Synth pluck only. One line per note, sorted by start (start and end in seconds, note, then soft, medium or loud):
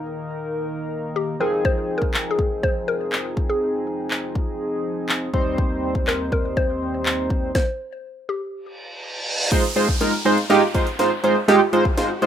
0.00 0.50 A#4 medium
1.16 1.41 G4 medium
1.41 1.66 A#4 medium
1.65 1.99 C5 loud
1.98 2.31 A#4 medium
2.31 2.61 G#4 medium
2.63 2.86 C5 loud
2.88 3.51 A#4 loud
3.50 4.44 G#4 medium
6.08 6.19 A#4 loud
6.32 6.58 A#4 medium
6.57 7.51 C5 loud
7.55 8.31 C5 loud
8.29 8.75 G4 medium